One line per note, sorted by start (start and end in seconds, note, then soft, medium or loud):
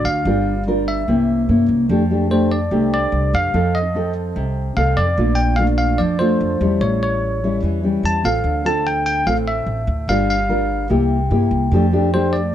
0.00 0.24 D3 medium
0.00 0.23 A3 medium
0.00 0.23 C4 medium
0.00 0.23 F#4 medium
0.05 0.24 D2 medium
0.05 0.63 F5 medium
0.25 1.03 G1 medium
0.25 1.06 G3 soft
0.25 0.52 D4 soft
0.25 0.53 F4 soft
0.25 0.53 A#4 medium
0.67 1.06 D4 soft
0.67 1.06 F4 medium
0.67 1.07 A#4 medium
0.88 1.66 E5 medium
1.08 1.46 C2 medium
1.08 1.88 C3 soft
1.08 1.46 A#3 soft
1.08 1.46 C#4 soft
1.08 1.46 E4 medium
1.49 1.68 G2 medium
1.49 1.88 A#3 medium
1.49 1.88 C#4 soft
1.49 1.89 E4 soft
1.69 1.88 C2 medium
1.89 2.67 F2 medium
1.89 2.70 F3 soft
1.89 2.02 A3 soft
1.89 2.02 D4 soft
1.89 2.02 G4 soft
2.10 2.28 A3 soft
2.10 2.28 D4 soft
2.10 2.28 G4 medium
2.30 2.57 A3 medium
2.30 2.57 D4 soft
2.30 2.57 G4 medium
2.30 2.50 C5 medium
2.52 2.93 D5 medium
2.71 3.09 C2 medium
2.71 3.51 C3 medium
2.71 3.50 A3 soft
2.71 3.50 D4 soft
2.71 3.50 G4 medium
2.94 3.35 D5 medium
3.12 3.31 C2 medium
3.34 3.52 F2 medium
3.34 3.76 F5 medium
3.54 4.32 F2 medium
3.54 4.34 F3 soft
3.54 3.80 C4 medium
3.54 3.80 D#4 soft
3.54 3.80 A4 medium
3.75 4.13 D#5 medium
3.95 4.73 C4 soft
3.95 4.74 D#4 soft
3.95 4.74 A4 medium
4.36 4.74 C2 medium
4.36 5.16 C3 soft
4.76 4.96 C2 medium
4.76 5.04 C4 medium
4.76 5.04 D#4 medium
4.76 5.05 A4 medium
4.76 4.98 F5 medium
4.97 5.16 F2 medium
4.97 5.39 D5 medium
5.17 5.95 A#1 medium
5.17 5.97 A#2 soft
5.17 5.55 A3 medium
5.17 5.55 D4 soft
5.17 5.56 F4 medium
5.35 5.58 G5 medium
5.56 6.16 A3 soft
5.56 6.17 D4 soft
5.56 6.17 F4 medium
5.56 5.66 F5 medium
5.78 6.00 F5 medium
5.98 6.38 F2 medium
5.98 6.79 F3 medium
5.98 6.20 D5 medium
6.19 6.58 A3 soft
6.19 6.58 D4 soft
6.19 6.58 F4 medium
6.19 6.83 C5 medium
6.41 6.59 F2 medium
6.61 6.80 E2 medium
6.61 7.40 G3 soft
6.61 7.40 C#4 medium
6.61 7.40 E4 medium
6.81 7.59 A1 medium
6.81 7.61 A2 soft
6.81 7.02 C#5 medium
7.03 7.60 C#5 medium
7.43 7.81 G3 soft
7.43 7.81 C#4 medium
7.43 7.81 E4 medium
7.63 8.01 E2 medium
7.63 8.43 E3 soft
7.84 8.21 G3 medium
7.84 8.22 C#4 soft
7.84 8.22 E4 soft
8.03 8.23 E2 medium
8.03 8.26 A5 medium
8.24 8.43 A1 medium
8.24 8.63 C4 soft
8.24 8.63 F4 medium
8.24 8.64 A4 medium
8.24 8.67 F5 medium
8.44 9.22 D2 medium
8.44 9.24 D3 soft
8.64 9.23 C4 soft
8.64 9.23 F4 medium
8.64 9.24 A4 medium
8.64 8.87 A5 medium
8.87 9.05 G5 medium
9.06 9.27 G5 medium
9.26 9.65 A1 medium
9.26 10.06 A2 soft
9.26 9.82 C4 soft
9.26 9.82 F4 medium
9.26 9.82 A4 medium
9.26 9.36 F5 medium
9.48 10.11 E5 medium
9.66 9.86 A1 medium
9.87 10.07 D2 medium
10.08 10.86 G1 medium
10.08 10.88 G3 soft
10.08 10.35 D4 medium
10.08 10.35 F4 soft
10.08 10.35 A#4 soft
10.08 10.29 F5 medium
10.30 10.87 F5 medium
10.49 10.89 D4 soft
10.49 10.88 F4 soft
10.49 10.89 A#4 medium
10.90 11.28 C2 medium
10.90 11.70 C3 soft
10.90 11.17 A#3 medium
10.90 11.17 E4 medium
10.90 11.17 G4 medium
11.31 11.50 G2 medium
11.31 11.71 A#3 medium
11.31 11.71 E4 soft
11.31 11.71 G4 medium
11.51 11.70 C2 medium
11.71 12.50 F2 medium
11.71 12.52 F3 medium
11.71 11.84 A3 soft
11.71 11.85 D4 medium
11.71 11.85 G4 medium
11.92 12.10 A3 medium
11.92 12.10 D4 medium
11.92 12.10 G4 medium
12.13 12.40 A3 soft
12.13 12.40 D4 soft
12.13 12.40 G4 medium
12.13 12.35 C5 medium
12.33 12.55 D5 medium